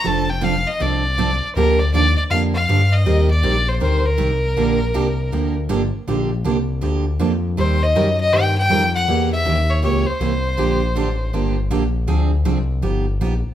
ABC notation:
X:1
M:4/4
L:1/16
Q:"Swing" 1/4=160
K:Bb
V:1 name="Fiddle"
a2 g2 f2 e2 d6- d z | B2 d2 d2 d2 f2 f4 e2- | e2 d4 c2 c2 B6- | B8- B2 z6 |
z16 | c2 e4 e2 g2 g4 _g2- | _g2 =e4 ^c2 c2 =c6- | c8- c2 z6 |
z16 |]
V:2 name="Steel-string acoustic guitar"
[F,CDA]2 z2 [F,CDA] z3 [F,CDA]2 z2 [F,CDA] z3 | [D,F,B,DG]2 z2 [D,F,B,DG] z3 [D,F,B,DG]2 z2 [D,F,B,DG] z3 | [E,G,CGB]2 z2 [E,G,CGB] z3 [E,G,CGB]2 z2 [E,G,CGB] z3 | [D,F,B,DG]2 z2 [D,F,B,DG] z3 [D,F,B,DG]2 z2 [D,F,B,DG] z3 |
[D,F,B,DG]2 z2 [D,F,B,DG] z3 [D,F,B,DG]2 z2 [D,F,B,DG] z3 | [E,G,CGB]2 z2 [E,G,CGB] z3 [E,G,CGB]2 z2 [E,G,CGB] z3 | [=E,B,^CG]2 z2 [E,B,CG] z3 [E,B,CG]2 z2 [E,B,CG] z3 | [D,F,B,DG]2 z2 [D,F,B,DG] z3 [D,F,B,DG]2 z2 [D,F,B,DG] z3 |
[D,F,CD_A]2 z2 [D,F,CDA] z3 [F,=B,^DG]2 z2 [F,B,DG] z3 |]
V:3 name="Analog synth bass" clef=bass
F,,,8 C,,8 | D,,4 E,,2 E,,2 F,,4 G,,4 | E,,4 B,,,4 D,,4 C,,4 | B,,,4 C,,4 D,,4 G,,,2 G,,,2 |
B,,,4 C,,4 D,,4 F,,4 | E,,4 _G,,4 =G,,4 F,,4 | =E,,4 _E,,4 ^C,,2 C,,2 =C,,4 | B,,,4 A,,,4 G,,,4 B,,,4 |
D,,4 C,,4 G,,,4 ^A,,,2 A,,,2 |]